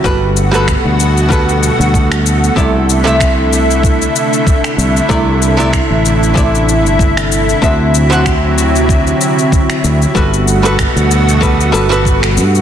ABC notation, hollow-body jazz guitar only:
X:1
M:4/4
L:1/16
Q:"Swing 16ths" 1/4=95
K:Clyd
V:1 name="Hollow-body jazz guitar"
[G,FAB]3 [G,FAB]4- [G,FAB] [G,FAB]8 | [C,A,Ed]3 [C,A,Ee]12- [C,A,Ee] | [C,A,Ed]3 [C,A,Ed]4- [C,A,Ed] [C,A,Ed]8 | [D,CFe]3 [D,CFf]12- [D,CFf] |
[G,FAB]3 [G,FAB]4- [G,FAB] [G,FAB]2 [G,FAB] [G,FAB]4- [G,FAB] |]